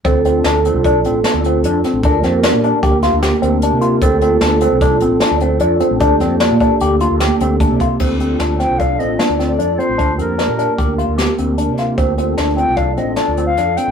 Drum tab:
CC |----------|----------|----------|----------|
HH |xxxxxxxxxx|xxxxxxxxxx|xxxxxxxxxx|xxxxxxxxxx|
SD |--o---o--o|-oo--oo---|--o---o---|-oo---o---|
BD |o---o-----|o---o-----|o---o-----|o--o----oo|

CC |x---------|----------|----------|
HH |-xxxxxxxxx|xxxxxxxxxx|xxxxxxxxxx|
SD |--oo--oo--|--o---o--o|--o---o-o-|
BD |o---o-----|o---o-----|o---o-----|